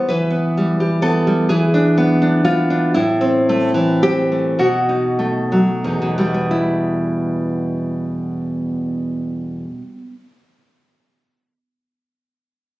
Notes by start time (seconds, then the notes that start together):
0.09 E3 B4
0.30 B3
0.57 G3
0.80 G4
1.02 B3 A4
1.27 G3
1.49 E3 G#4
1.74 D4
1.98 B3
2.22 D4
2.44 B3 F4
2.70 D4
2.94 A2 E4
3.21 C4
3.49 A3
3.74 E3
4.03 C4 G4
4.32 A3
4.59 B2 F#4
4.89 D#4
5.19 A3
5.52 F#3
5.84 E2 D#4
6.02 B2
6.18 G3 A3
6.34 B3
6.51 E4